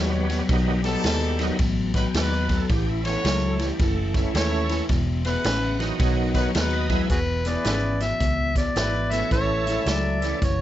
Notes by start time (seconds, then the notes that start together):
Already playing: D#2 B2 F#3 G3 B3 D#4 F#4 C#5
0.29 B2 F#3, snare, ride
0.49 B1 B2 D#3 F#3 B3 D#4, kick, snare, ride
0.84 B2 F#3 B3 D#4 F#4 A4, snare, ride
1.04 D#2 B2 G#3, snare, ride
1.39 B2 D#3 F#3 B3 D#4, snare, ride
1.59 A1 B2 F#3, kick, snare, ride
1.94 B2 F#3 B3 D#4 F#4 B4, kick, snare, ride
1.99 G5
2.14 D#2 B2 F#3 B3 D#4 F#4 B4, snare, ride
2.18 D5
2.36 B4
2.49 B2 F#3, kick, snare, ride
2.55 A4
2.69 A1 A2 E3 G4, kick, snare, ride
2.89 E4
3.04 A2 E3 B3 C#4 E4 A4 C#5, snare, ride
3.24 C#2 A2 F#3 A#3, snare, ride
3.46 A3
3.59 A2 E3, snare, ride
3.64 G3
3.79 F#1 A2 E3, kick, snare, ride
3.83 A3
4.14 A2 E3 A3 C#4 E4, kick, snare, ride
4.34 D#2 A2 E3 C#4 E4 A4 C#5, snare, ride
4.69 A2 E3, snare, ride
4.89 E1 E2 B2, kick, snare, ride
5.24 E2 B2 B3 E4 G#4 B4 F5, snare, ride
5.30 F#5
5.44 A1 E2 C#3, snare, ride
5.64 F#5
5.79 E2 B2 D#3 F#3 B3 D#4, snare, ride
6.00 B1 B2 F#3 C#5, kick, snare, ride
6.18 F#5
6.34 B2 F#3 B3 D#4 F#4 B4 C#5, kick, snare, ride
6.54 D#2 B2 F#3 B3 D#4 F#4 B4 F#5, snare, ride
6.73 B4 D#5
6.89 B2 E3 F#3 G#3 B3 E4, kick, snare, ride
7.09 E1 E2 B2 F#4 G#4 B4, kick, snare, closed hi-hat
7.45 E2 B2 E4 G#4 B4 D5, snare, closed hi-hat
7.64 G#1 E2 C#3 A4 B4 D5, snare, closed hi-hat
8.00 E2 B2 E5, snare, closed hi-hat
8.20 C#2 E2 B2, kick, snare, closed hi-hat
8.56 E2 B2 D5, kick, snare, closed hi-hat
8.76 G#1 E2 B2 E4 B4, snare, closed hi-hat
9.11 E2 B2 E3 A3 C#4 E4 A4 E5, snare, closed hi-hat
9.31 A1 A2 E3 C#5, kick, snare, closed hi-hat
9.66 A2 E3 E4 A4 E5, snare, closed hi-hat
9.86 C#2 A2 F#3 D5, snare, closed hi-hat
10.20 A2 E3 A3 C#4 E4 A4, snare, closed hi-hat
10.41 F#1 A2 E3 C#5, kick, snare, closed hi-hat